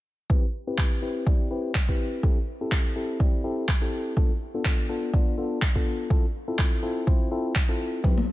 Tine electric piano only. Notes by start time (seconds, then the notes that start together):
0.30 C4 E4 G4 B4
0.67 C4 E4 G4 B4
1.02 C4 E4 G4 B4
1.26 C4 E4 G4 D5
1.51 C4 E4 G4 B4
1.88 C4 E4 G4 B4
2.23 C4 E4 G4 A4
2.61 C4 E4 G4 A4
2.96 C4 E4 G4 A4
3.20 C4 E4 G4 D5
3.44 C4 E4 G4 A4
3.82 C4 E4 G4 A4
4.17 B3 D4 F4 A4
4.54 B3 D4 F4 A4
4.89 B3 D4 F4 A4
5.13 B3 D4 F4 D5
5.38 B3 D4 F4 A4
5.76 B3 D4 F4 A4
6.10 C4 E4 F4 A4
6.48 C4 E4 F4 A4
6.83 C4 E4 F4 A4
7.07 C4 E4 F4 C5
7.31 C4 E4 F4 A4
7.69 C4 E4 F4 A4
8.04 C4 E4 G4 B4